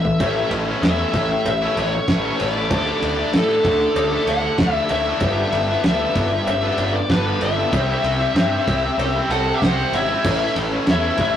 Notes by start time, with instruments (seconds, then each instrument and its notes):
Already playing: distorted electric guitar A2 E3, lead electric guitar E5
0.05 floor tom
0.19 picked electric bass A1, distorted electric guitar A2 E3 A3 C#4, tonewheel organ A3 E4 E5, kick, ride, cowbell
0.23 distorted electric guitar E4
0.36 distorted electric guitar A3 C#4 E4
0.51 picked electric bass A1, ride
0.68 distorted electric guitar A3 C#4 E4
0.82 picked electric bass E2, distorted electric guitar A2 E3 A3 C#4 E4, lead electric guitar E5, snare, ride, cowbell
1.13 picked electric bass A1, distorted electric guitar E3 A3 C#4 E4, kick, ride, cowbell
1.31 muted distorted electric guitar stroke
1.45 picked electric bass A1, lead electric guitar E5, ride, cowbell
1.62 distorted electric guitar A3 C#4 E4
1.77 picked electric bass A1, distorted electric guitar E3 A3 C#4 E4, lead electric guitar C#5, ride, cowbell
1.94 muted distorted electric guitar stroke
2.08 picked electric bass A1, distorted electric guitar A2 E3 A3 C#4 E4, kick, snare, ride
2.40 picked electric bass A1, lead electric guitar C#5, ride, cowbell
2.53 distorted electric guitar C#4 E4, lead electric guitar D5
2.58 distorted electric guitar A3
2.70 picked electric bass D2, distorted electric guitar D3 A3 D4 E4, tonewheel organ A3 E4 D5, kick, ride, cowbell
2.87 distorted electric guitar A3 D4 E4
3.02 picked electric bass D2, ride
3.19 distorted electric guitar A3 D4 E4
3.33 picked electric bass A2, distorted electric guitar D3 A3 D4 E4, lead electric guitar A4, snare, ride, cowbell
3.64 picked electric bass D2, distorted electric guitar D3 A3 D4 E4, kick, ride, cowbell
3.81 muted distorted electric guitar stroke
3.96 picked electric bass D2, ride, cowbell
4.12 distorted electric guitar A3 D4 E4
4.27 picked electric bass D2, distorted electric guitar D3 A3 D4 E4, lead electric guitar F#5, ride, cowbell
4.43 muted distorted electric guitar stroke
4.58 picked electric bass D2, distorted electric guitar D3 A3 D4 E4, kick, snare, ride
4.74 lead electric guitar E5
4.89 picked electric bass D2, lead electric guitar E5, ride, cowbell
5.06 distorted electric guitar A3 D4 E4
5.20 picked electric bass G1, distorted electric guitar G2 D3 G3 B3 D4, tonewheel organ B3 G4 D5, kick, ride, cowbell
5.37 distorted electric guitar G3 B3 D4
5.52 picked electric bass G1, ride
5.68 distorted electric guitar G3 B3 D4
5.84 picked electric bass D2, distorted electric guitar G2 D3 G3 B3 D4, lead electric guitar E5, snare, ride, cowbell
6.15 picked electric bass G1, distorted electric guitar D3 G3 B3 D4, kick, ride, cowbell
6.31 muted distorted electric guitar stroke
6.47 picked electric bass G1, lead electric guitar E5, ride, cowbell
6.63 distorted electric guitar G3 B3 D4
6.78 picked electric bass G1, distorted electric guitar D3 G3 B3 D4, ride, cowbell
6.94 lead electric guitar D5, muted distorted electric guitar stroke
7.09 picked electric bass G1, distorted electric guitar G2 D3 G3 B3 D4, lead electric guitar B4, kick, snare, ride
7.40 picked electric bass G1, lead electric guitar E5, ride, cowbell
7.57 distorted electric guitar G3 B3 D4
7.72 picked electric bass C2, distorted electric guitar C3 G3 C4 E4, tonewheel organ C4 G4 E5, kick, ride, cowbell
7.89 distorted electric guitar G3 C4 E4
8.04 picked electric bass C2, ride
8.20 distorted electric guitar G3 C4 E4
8.34 picked electric bass G2, distorted electric guitar C3 G3 C4 E4, snare, ride, cowbell
8.67 picked electric bass C2, distorted electric guitar C3 G3 C4 E4, kick, ride, cowbell
8.84 muted distorted electric guitar stroke
8.98 picked electric bass C2, ride, cowbell
9.16 distorted electric guitar G3 C4 E4
9.29 picked electric bass C2, distorted electric guitar C3, lead electric guitar A4 F#5, ride, cowbell
9.33 distorted electric guitar G3 C4 E4
9.48 muted distorted electric guitar stroke
9.54 lead electric guitar G4 E5
9.62 picked electric bass C2, distorted electric guitar C3 G3 C4 E4, lead electric guitar C5 F#5, kick, snare, ride
9.92 picked electric bass G#1, lead electric guitar E4 E5, ride, cowbell
10.10 distorted electric guitar G3 C4 E4
10.24 picked electric bass A1, distorted electric guitar A2 E3 A3 C#4 E4, tonewheel organ C#4 A4 E5, kick, crash, cowbell
10.41 distorted electric guitar A3 C#4 E4
10.56 picked electric bass A1, ride
10.72 distorted electric guitar A3 C#4 E4
10.87 picked electric bass E2, distorted electric guitar A2 E3 A3 C#4 E4, lead electric guitar E4, snare, ride, cowbell
10.91 lead electric guitar E5
11.18 picked electric bass A1, distorted electric guitar E3 A3 C#4 E4, lead electric guitar E5, kick, ride, cowbell
11.22 lead electric guitar E4